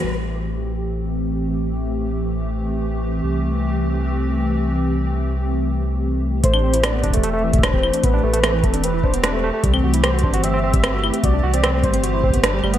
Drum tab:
HH |------------------------------------------------------------------------------------------------|------------------------------------------------------------------------------------------------|------------------------------------------------------------------------------------------------|------------------------------------------------------------------------------------------------|
CL |------------------------------------------------------------------------------------------------|------------------------------------------------------------------------------------------------|------------------------------------------------------------------------------------------------|------------------------------------------------------------------------------------------------|
SD |------------------------------------------------------------------------------------------------|------------------------------------------------------------------------------------------------|------------------------------------------------------------------------------------------------|------------------------------------------------------------------------------------------------|
BD |------------------------------------------------------------------------------------------------|------------------------------------------------------------------------------------------------|------------------------------------------------------------------------------------------------|------------------------------------------------------------------------------------------------|

HH |x-----------------x-----x-----------x-----x-----x-----------------x-----x-----------------x-----|x-----------------x-----x-----------x-----x-----x-----------------x-----x-----------------------|x-----------------x-----x--------x--------x-----x-----------------x-----x-----------------x-----|x-----------------x-----x-----------x-----x-----x-----------------x-----x-----------------x-----|
CL |------x-----------------x-----------------------------------------------x-----------x-----------|------------------------x-----------------------------------------------------------------------|------x-----------------x-----------------------------------------------x-----------x-----------|------------------------x-----------------------------------------------------------x-----------|
SD |------------------------r-----------------------------------------------r-----------------------|------------------------r-----------------------------------------------r-----------------------|------------------------r-----------------------------------------------r-----------------------|------------------------r-----------------------------------------------r-----------------------|
BD |o-----------------------------------o---o---o---------------------o--o--o--o--o-----------------|o-----------------------------------o-----------------------o-----------------------------------|o-----------------------------------o-----------------------------o-----------------------------|o-----------------------------------o-----------------------o---o---o---------------------------|